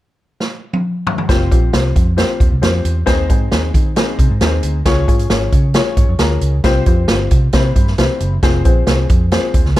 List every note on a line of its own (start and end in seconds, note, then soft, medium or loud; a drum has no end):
0.40 snare medium
0.73 high tom medium
1.07 floor tom medium
1.18 floor tom medium
1.29 1.52 F1 medium
1.29 1.47 C4 loud
1.29 1.47 F4 medium
1.29 1.47 G4 medium
1.29 1.46 C5 loud
1.29 kick loud
1.29 snare medium
1.29 closed hi-hat medium
1.51 1.69 A#1 medium
1.51 1.69 C4 medium
1.51 1.69 F4 medium
1.51 1.69 G4 medium
1.51 1.69 C5 medium
1.51 kick medium
1.51 closed hi-hat medium
1.73 1.91 C2 medium
1.73 2.08 C4 medium
1.73 2.08 F4 medium
1.73 2.08 G4 medium
1.73 2.09 C5 medium
1.73 snare medium
1.73 closed hi-hat medium
1.95 2.22 F2 medium
1.95 kick medium
1.95 closed hi-hat medium
2.17 2.53 C4 medium
2.17 2.52 F4 medium
2.17 2.53 G4 medium
2.17 2.53 C5 medium
2.17 snare loud
2.17 closed hi-hat medium
2.40 2.49 D#2 medium
2.40 kick medium
2.40 closed hi-hat medium
2.52 2.61 C2 medium
2.61 2.80 F2 medium
2.61 2.97 C4 medium
2.61 2.97 F4 medium
2.61 2.97 G4 medium
2.61 2.97 C5 medium
2.61 snare loud
2.61 closed hi-hat medium
2.85 3.02 E2 medium
2.85 closed hi-hat medium
3.06 3.25 D#2 medium
3.06 3.24 C4 loud
3.06 3.24 D#4 loud
3.06 3.24 G#4 medium
3.06 3.24 C5 loud
3.06 kick medium
3.06 snare medium
3.06 closed hi-hat medium
3.29 3.47 G#2 medium
3.29 3.47 C4 medium
3.29 3.47 D#4 medium
3.29 3.47 G#4 medium
3.29 3.47 C5 medium
3.29 kick medium
3.29 closed hi-hat medium
3.52 3.70 D#2 medium
3.52 3.87 C4 medium
3.52 3.87 D#4 medium
3.52 3.87 G#4 medium
3.52 3.87 C5 medium
3.52 snare medium
3.52 closed hi-hat medium
3.74 4.01 D#3 medium
3.74 kick medium
3.74 closed hi-hat medium
3.96 4.31 C4 medium
3.96 4.31 D#4 medium
3.96 4.32 G#4 medium
3.96 4.31 C5 medium
3.96 snare loud
3.96 closed hi-hat medium
4.19 4.28 C3 medium
4.19 kick medium
4.19 closed hi-hat medium
4.31 4.39 G#2 medium
4.41 4.59 D#2 medium
4.41 4.76 C4 medium
4.41 4.76 D#4 medium
4.41 4.76 G#4 medium
4.41 4.46 A#4 medium
4.41 snare medium
4.41 closed hi-hat medium
4.47 4.79 C5 medium
4.63 4.81 D2 medium
4.63 closed hi-hat medium
4.85 5.03 C#2 medium
4.85 5.03 C#4 loud
4.85 5.03 F4 loud
4.85 5.03 G#4 medium
4.85 5.03 C#5 loud
4.85 kick medium
4.85 snare medium
4.85 closed hi-hat medium
5.07 5.26 G#2 medium
5.07 5.25 C#4 medium
5.07 5.25 F4 medium
5.07 5.25 G#4 medium
5.07 5.26 C#5 medium
5.07 kick medium
5.07 closed hi-hat medium
5.19 closed hi-hat medium
5.30 5.48 G#1 medium
5.30 5.65 C#4 medium
5.30 5.65 F4 medium
5.30 5.65 G#4 medium
5.30 5.65 C#5 medium
5.30 snare medium
5.30 closed hi-hat medium
5.52 5.79 C#3 medium
5.52 kick medium
5.52 closed hi-hat medium
5.74 6.10 C#4 medium
5.74 6.10 F4 medium
5.74 6.10 G#4 medium
5.74 6.10 C#5 medium
5.74 snare loud
5.74 closed hi-hat medium
5.97 6.06 G#2 medium
5.97 kick medium
5.97 closed hi-hat medium
6.09 6.17 F2 medium
6.18 6.36 D2 medium
6.18 6.54 C#4 medium
6.18 6.54 F4 medium
6.18 6.54 G#4 medium
6.18 6.54 A#4 medium
6.18 snare medium
6.18 closed hi-hat medium
6.41 6.59 C#2 medium
6.41 closed hi-hat medium
6.64 6.81 C2 loud
6.64 6.82 C4 loud
6.64 6.82 F4 medium
6.64 6.82 G4 loud
6.64 6.82 C5 loud
6.64 kick medium
6.64 snare medium
6.64 closed hi-hat medium
6.86 7.04 F2 medium
6.86 7.04 C4 medium
6.86 7.04 F4 medium
6.86 7.04 G4 medium
6.86 7.04 C5 medium
6.86 kick medium
6.86 closed hi-hat medium
7.08 7.27 G1 medium
7.08 7.44 C4 medium
7.08 7.44 F4 medium
7.08 7.44 G4 medium
7.08 7.44 C5 medium
7.08 snare loud
7.08 closed hi-hat medium
7.31 7.49 C3 medium
7.31 kick medium
7.31 closed hi-hat medium
7.53 7.71 C3 loud
7.53 7.89 C4 medium
7.53 7.89 E4 medium
7.53 7.89 G4 medium
7.53 7.89 C5 medium
7.53 kick medium
7.53 snare loud
7.53 closed hi-hat medium
7.76 7.93 G2 medium
7.76 kick medium
7.76 closed hi-hat medium
7.87 snare soft
7.98 8.07 C2 medium
7.98 8.33 C4 medium
7.98 8.33 E4 medium
7.98 8.33 G4 medium
7.98 8.33 C5 medium
7.98 snare loud
7.98 closed hi-hat medium
8.20 8.38 F#1 medium
8.20 closed hi-hat medium
8.43 8.60 F1 loud
8.43 8.60 C4 loud
8.43 8.60 F4 medium
8.43 8.60 G#4 medium
8.43 8.61 C5 loud
8.43 kick loud
8.43 snare medium
8.43 closed hi-hat medium
8.65 8.83 A#1 medium
8.65 8.82 C4 medium
8.65 8.83 F4 medium
8.65 8.83 G#4 medium
8.65 8.83 C5 medium
8.65 kick loud
8.65 closed hi-hat medium
8.87 9.04 C2 medium
8.87 9.22 C4 medium
8.87 9.22 F4 medium
8.87 9.23 G#4 medium
8.87 9.23 C5 medium
8.87 snare medium
8.87 closed hi-hat medium
9.09 9.36 F2 medium
9.09 kick medium
9.09 closed hi-hat medium
9.32 9.67 C4 medium
9.32 9.67 F4 medium
9.32 9.67 G#4 medium
9.32 9.67 C5 medium
9.32 snare loud
9.32 closed hi-hat medium
9.54 9.63 D#2 medium
9.54 kick medium
9.54 closed hi-hat medium
9.65 9.74 C#2 medium
9.65 snare soft
9.76 9.80 F2 medium
9.76 9.80 A#4 medium
9.76 snare loud
9.76 closed hi-hat medium